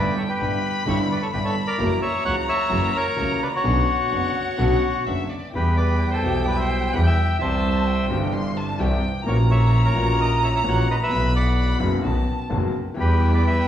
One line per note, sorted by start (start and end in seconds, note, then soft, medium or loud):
0.00 0.14 G1 medium
0.00 0.14 G2 medium
0.00 0.13 D3 medium
0.00 0.13 G3 medium
0.00 0.14 B3 medium
0.00 0.14 D4 medium
0.00 0.13 E4 medium
0.00 0.14 E4 medium
0.00 0.14 B4 medium
0.00 0.19 D5 medium
0.00 0.42 G5 loud
0.17 0.23 A4 medium
0.17 0.23 C#5 medium
0.29 0.84 G4 medium
0.29 0.83 B4 medium
0.39 0.60 G1 medium
0.39 0.60 G2 medium
0.39 0.60 D3 soft
0.39 0.60 G3 medium
0.39 0.60 G3 soft
0.39 0.60 B3 soft
0.39 0.60 D4 soft
0.39 0.60 E4 medium
0.39 0.60 E4 soft
0.39 1.33 B5 loud
0.86 1.06 G1 medium
0.86 1.07 G1 medium
0.86 1.07 G2 medium
0.86 1.06 D3 medium
0.86 1.06 G3 medium
0.86 1.07 G3 medium
0.86 1.06 B3 medium
0.86 1.06 D4 medium
0.86 1.06 E4 medium
0.86 1.07 E4 medium
0.86 0.99 G4 medium
0.86 0.98 C#5 medium
1.12 1.22 B4 medium
1.12 1.22 D5 medium
1.22 1.27 A4 medium
1.22 1.27 C#5 medium
1.33 1.53 G1 medium
1.33 1.53 G2 medium
1.33 1.53 D3 medium
1.33 1.53 G3 medium
1.33 1.53 G3 soft
1.33 1.53 B3 soft
1.33 1.53 D4 soft
1.33 1.53 E4 medium
1.33 1.54 E4 medium
1.33 1.39 G4 medium
1.33 1.38 B4 medium
1.33 1.81 B5 loud
1.45 1.55 A4 medium
1.45 1.55 C#5 medium
1.67 2.00 A#4 medium
1.67 2.00 D5 medium
1.78 1.99 F#1 medium
1.78 1.98 F#2 medium
1.78 1.98 E3 medium
1.78 1.98 F#3 medium
1.78 1.99 F#3 medium
1.78 1.99 A#3 medium
1.78 1.98 C#4 medium
1.78 1.99 E4 medium
1.78 1.99 F#4 medium
1.78 3.67 A#5 loud
2.02 2.24 C#5 medium
2.02 2.24 E5 medium
2.24 2.44 C#2 medium
2.24 2.46 C#2 medium
2.24 2.44 C#3 medium
2.24 2.44 E3 soft
2.24 2.45 F#3 medium
2.24 2.45 A#3 soft
2.24 2.45 C#4 soft
2.24 2.45 E4 medium
2.24 2.45 F#4 medium
2.24 2.36 C#5 medium
2.24 2.36 F#5 loud
2.49 2.92 C#5 medium
2.49 2.97 E5 loud
2.69 2.91 F#1 medium
2.69 2.90 F#2 medium
2.69 2.90 E3 medium
2.69 2.91 F#3 medium
2.69 2.90 A#3 medium
2.69 2.91 A#3 medium
2.69 2.90 C#4 medium
2.69 2.91 E4 medium
2.69 2.91 F#4 medium
2.96 3.39 A#4 medium
2.96 3.44 C#5 loud
3.16 3.37 C#2 medium
3.16 3.38 C#2 medium
3.16 3.37 C#3 medium
3.16 3.37 E3 medium
3.16 3.38 F#3 soft
3.16 3.37 A#3 soft
3.16 3.38 A#3 soft
3.16 3.37 C#4 soft
3.16 3.38 E4 medium
3.16 3.37 F#4 medium
3.43 3.48 B4 medium
3.43 3.48 D5 medium
3.55 5.03 F#4 medium
3.55 5.04 C#5 medium
3.63 3.84 B1 medium
3.63 3.84 B2 medium
3.63 3.84 D3 medium
3.63 3.84 B3 medium
3.63 3.84 C#4 medium
3.63 3.84 D4 medium
3.63 3.84 F#4 medium
3.63 5.08 F#5 loud
4.11 4.31 F#1 medium
4.11 4.32 F#1 medium
4.11 4.31 F#2 soft
4.11 4.31 D3 soft
4.11 4.31 B3 soft
4.11 4.31 C#4 soft
4.11 4.31 D4 medium
4.11 4.31 F#4 medium
4.57 4.79 B1 medium
4.57 4.79 B2 medium
4.57 4.78 D3 medium
4.57 4.78 B3 medium
4.57 4.78 C#4 medium
4.57 4.79 C#4 medium
4.57 4.78 D4 medium
4.57 4.79 F#4 medium
5.05 5.27 F#1 medium
5.05 5.27 F#2 medium
5.05 5.27 D3 soft
5.05 5.26 B3 soft
5.05 5.27 B3 soft
5.05 5.26 C#4 soft
5.05 5.27 C#4 soft
5.05 5.26 D4 medium
5.05 5.27 F#4 medium
5.05 5.31 E5 medium
5.30 5.52 D5 medium
5.52 6.21 E2 medium
5.52 6.21 E3 medium
5.52 6.21 G3 medium
5.52 6.22 B3 medium
5.52 5.77 G4 medium
5.52 5.77 B4 medium
5.52 7.42 G5 loud
5.57 6.22 G4 medium
5.77 6.11 B4 medium
5.77 6.10 D5 medium
6.11 6.46 A4 medium
6.11 6.44 C5 medium
6.22 6.90 B1 medium
6.22 6.91 B1 medium
6.22 6.91 B2 medium
6.22 6.90 E3 medium
6.22 6.90 G3 medium
6.22 6.92 G4 medium
6.45 6.58 B4 medium
6.45 6.57 D5 medium
6.56 6.92 C5 medium
6.56 6.90 E5 medium
6.92 7.13 E2 medium
6.92 7.14 E2 medium
6.92 7.14 E3 medium
6.92 7.14 G3 medium
6.92 7.14 B3 medium
6.92 7.14 G4 medium
6.92 7.00 B4 medium
6.92 6.98 F#5 medium
7.03 7.38 E5 medium
7.03 7.37 G5 loud
7.39 8.07 C2 medium
7.39 8.07 C3 medium
7.39 8.06 E3 medium
7.39 8.07 G3 medium
7.39 8.07 C4 medium
7.39 8.08 G4 medium
7.39 8.07 C5 medium
7.39 8.05 E5 loud
7.39 7.88 A5 loud
7.87 8.34 G5 medium
8.08 8.76 G1 loud
8.08 8.76 G1 medium
8.08 8.76 G2 medium
8.08 8.75 E3 medium
8.08 8.76 G3 medium
8.08 8.76 C4 medium
8.12 8.77 G4 medium
8.33 8.58 C6 loud
8.57 8.81 A5 medium
8.79 8.99 C2 medium
8.79 8.99 C3 medium
8.79 8.99 E3 medium
8.79 8.99 G3 medium
8.79 8.99 C4 medium
8.79 8.99 G4 medium
8.79 9.24 G5 loud
9.24 9.92 A#1 loud
9.24 9.92 A#1 medium
9.24 9.92 A#2 medium
9.24 9.91 E3 medium
9.24 9.92 A#3 medium
9.24 9.92 C#4 medium
9.24 9.37 A#4 medium
9.24 9.38 C#5 medium
9.24 11.12 A#5 loud
9.28 9.93 F#4 medium
9.50 9.82 C#5 medium
9.50 9.86 E5 medium
9.85 10.16 A#4 medium
9.85 10.20 C#5 medium
9.93 10.61 A#1 medium
9.93 10.61 A#2 medium
9.93 10.60 E3 medium
9.93 10.61 A#3 medium
9.93 10.62 C#4 medium
9.93 10.62 F#4 medium
10.19 10.40 A#4 medium
10.19 10.43 D#5 medium
10.43 10.48 C#5 medium
10.43 10.48 E5 medium
10.55 10.60 C#5 medium
10.55 10.61 E5 medium
10.63 10.84 A#1 medium
10.63 10.83 A#2 medium
10.63 10.83 E3 medium
10.63 10.83 A#3 medium
10.63 10.84 C#4 medium
10.63 10.84 F#4 medium
10.68 10.88 C#5 medium
10.68 10.88 F#5 loud
10.91 10.95 B4 medium
10.91 10.95 D#5 loud
11.03 11.33 B4 medium
11.03 11.34 E5 loud
11.07 11.76 B1 medium
11.07 11.77 B1 loud
11.07 11.76 B2 medium
11.07 11.75 E3 medium
11.07 11.76 F#3 medium
11.07 11.77 B3 medium
11.07 11.57 B5 loud
11.12 11.77 F#4 medium
11.36 11.78 D5 medium
11.36 11.79 F#5 medium
11.58 12.01 B5 medium
11.79 12.00 F#1 medium
11.79 12.00 F#2 medium
11.79 12.00 E3 medium
11.79 12.00 F#3 medium
11.79 12.00 B3 medium
11.79 12.00 F#4 medium
12.02 12.23 B1 medium
12.02 12.23 B2 medium
12.02 12.23 D#3 medium
12.02 12.23 F#3 medium
12.02 12.23 B3 medium
12.02 12.23 F#4 medium
12.02 12.70 A5 medium
12.50 12.70 F#1 medium
12.50 12.71 F#2 medium
12.50 12.70 D#3 medium
12.50 12.71 F#3 medium
12.50 12.70 B3 medium
12.50 12.71 F#4 medium
12.94 13.64 E2 medium
12.94 13.64 E2 loud
12.94 13.64 E3 medium
12.94 13.63 G3 medium
12.94 13.64 G3 medium
12.94 13.64 B3 medium
12.94 13.64 E4 medium
12.94 13.68 G5 loud
12.98 13.65 G4 medium
12.98 13.31 G4 medium
12.98 13.32 B4 medium
13.34 13.44 B4 medium
13.34 13.46 D5 medium
13.46 13.68 B4 medium
13.46 13.68 E5 medium